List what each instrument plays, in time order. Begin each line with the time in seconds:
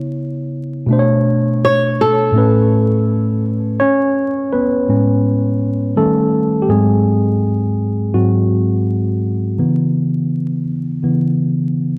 Already playing: tine electric piano C#3 B3 E4 C#5
0.86 tine electric piano B2 A3
0.91 tine electric piano D4 C5
0.99 tine electric piano C#5
1.65 nylon-string guitar C#5
2.01 nylon-string guitar A4
2.32 tine electric piano A2 A3
2.36 tine electric piano C#4 B4
3.80 tine electric piano C#4 C#5
4.53 tine electric piano B3 B4
4.89 tine electric piano A2 G#3 C#4
5.96 tine electric piano D#3 G3 A3 C#4 A4
6.62 tine electric piano G4
6.69 tine electric piano G#2 F#3 G#3 C4 G#4
8.14 tine electric piano G#2 F#3 C4 F#4
9.58 tine electric piano C#3 E3 B3
11.03 tine electric piano C#3 E3 B3